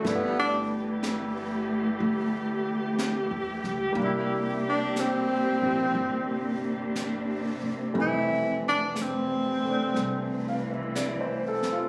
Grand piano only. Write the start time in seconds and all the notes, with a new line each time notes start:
0.03 A3 B3 D4
0.08 E4
3.93 G3 A#3
3.99 D4
4.03 E4
5.63 C4 E4
7.94 G3 A3 C4
7.98 E3
9.65 A3 D4
10.48 F5
10.72 E5
10.96 D5
11.21 C5
11.48 A4
11.72 F4